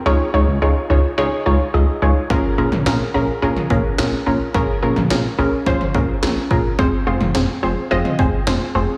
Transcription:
<<
  \new Staff \with { instrumentName = "Synth pluck" } { \time 4/4 \key bes \minor \tempo 4 = 107 <ees' f' aes' des''>8 <ees' f' aes' des''>8 <ees' f' aes' des''>8 <ees' f' aes' des''>8 <ees' f' aes' des''>8 <ees' f' aes' des''>8 <ees' f' aes' ees''>8 <ees' f' aes' des''>8 | <des' f' aes' bes'>8 <des' f' aes' bes'>8 <des' f' aes' bes'>8 <des' f' aes' bes'>8 <des' f' aes' bes'>8 <des' f' aes' bes'>8 <des' f' aes' bes'>8 <des' f' aes' bes'>8 | <des' f' aes' bes'>8 <des' f' aes' bes'>8 <des' f' aes' bes'>8 <des' f' aes' bes'>8 <des' f' aes' c''>8 <des' f' aes' bes'>8 <des' f' aes' bes'>8 <des' f' aes' bes'>8 | <c' f' aes' c''>8 <c' f' aes' c''>8 <c' f' aes' c''>8 <c' f' aes' c''>8 <c' f' aes' ees''>8 <c' f' aes' c''>8 <c' f' aes' c''>8 <c' f' aes' c''>8 | }
  \new Staff \with { instrumentName = "Analog synth bass" } { \clef bass \time 4/4 \key bes \minor des,16 r16 des,16 des,16 des,16 r16 des,16 r16 des,16 r16 des,16 r16 des,16 r16 des,16 r16 | bes,,16 r16 bes,,16 bes,,16 bes,,16 r16 bes,,16 r16 bes,,16 r16 bes,,16 r16 bes,,16 r16 bes,,16 r16 | bes,,16 r16 bes,,16 bes,,16 bes,,16 r16 bes,,16 r16 bes,,16 r16 bes,,16 r16 bes,,16 r16 bes,,16 r16 | f,,16 r16 f,,16 f,,16 f,,16 r16 f,,16 r16 f,,16 r16 f,,16 r16 f,,16 r16 f,,16 r16 | }
  \new DrumStaff \with { instrumentName = "Drums" } \drummode { \time 4/4 r4 r4 r4 r4 | bd8. toml16 sn4 r16 toml16 bd8 sn4 | bd8. toml16 sn4 bd16 toml16 bd8 sn8 bd8 | bd8. toml16 sn4 r16 toml16 bd8 sn4 | }
>>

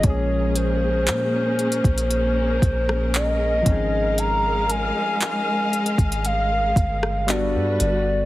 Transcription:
<<
  \new Staff \with { instrumentName = "Soft synth lead" } { \time 4/4 \key bes \dorian \tempo 4 = 58 des''8 c''4. c''4 ees''4 | bes''8 aes''4. f''4 d''8 d''8 | }
  \new Staff \with { instrumentName = "String section" } { \time 4/4 \key bes \dorian <bes des' aes' bes'>2.~ <bes des' aes' bes'>8 <aes ees'' f''>8~ | <aes ees'' f''>2. <g fis' b'>4 | }
  \new Staff \with { instrumentName = "Synth keys" } { \time 4/4 \key bes \dorian <f aes bes des' aes'>2.~ <f aes bes des' aes'>8 <f c' des' ees' aes'>8~ | <f c' des' ees' aes'>2. <g b d' fis' a'>4 | }
  \new Staff \with { instrumentName = "808-style bass" } { \clef bass \time 4/4 \key bes \dorian bes,,4 bes,8. bes,,8. bes,,4 aes,,8~ | aes,,8. r4 aes,,8. g,,8. g,16 g,,8 | }
  \new DrumStaff \with { instrumentName = "Drums" } \drummode { \time 4/4 <hh bd>8 hh8 <hc hh>8 hh32 hh32 <hh bd>32 hh32 hh8 <hh bd>16 ss16 <hc hh>8 <hh bd>8 | hh8 hh8 <hc hh>8 hh32 hh32 <hh bd>32 hh32 hh8 <hh bd>16 ss16 <hc hh>8 hh8 | }
>>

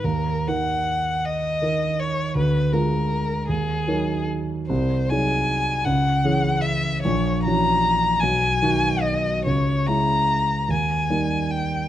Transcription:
<<
  \new Staff \with { instrumentName = "Violin" } { \time 6/8 \key dis \phrygian \tempo 4. = 50 ais'8 fis''4 dis''4 cis''8 | b'8 ais'4 gis'4 r8 | bis'8 gis''4 fis''4 e''8 | cis''8 ais''4 gis''4 dis''8 |
cis''8 ais''4 gis''4 g''8 | }
  \new Staff \with { instrumentName = "Grand piano" } { \time 6/8 \key dis \phrygian dis,8 <dis dis' ais'>4. <dis dis' ais'>4 | d,8 <gis eis' ais'>4 dis,8 <fis dis' ais'>4 | bis,,8 <fis dis' gis'>4 cis,8 <e cis' gis'>4 | ais,,8 <e cis' fis'>4 b,,8 <dis dis' fis'>4 |
cis,8 <gis cis' e'>4 dis,8 <g ais dis'>4 | }
>>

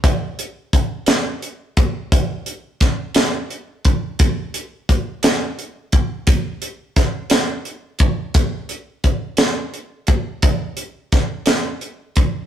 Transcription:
\new DrumStaff \with { instrumentName = "Drums" } \drummode { \time 6/8 \tempo 4. = 58 <hh bd>8 hh8 <hh bd>8 <hh sn>8 hh8 <hh bd>8 | <hh bd>8 hh8 <hh bd sn>8 <hh sn>8 hh8 <hh bd>8 | <hh bd>8 hh8 <hh bd>8 <hh sn>8 hh8 <hh bd>8 | <hh bd>8 hh8 <hh bd sn>8 <hh sn>8 hh8 <hh bd>8 |
<hh bd>8 hh8 <hh bd>8 <hh sn>8 hh8 <hh bd>8 | <hh bd>8 hh8 <hh bd sn>8 <hh sn>8 hh8 <hh bd>8 | }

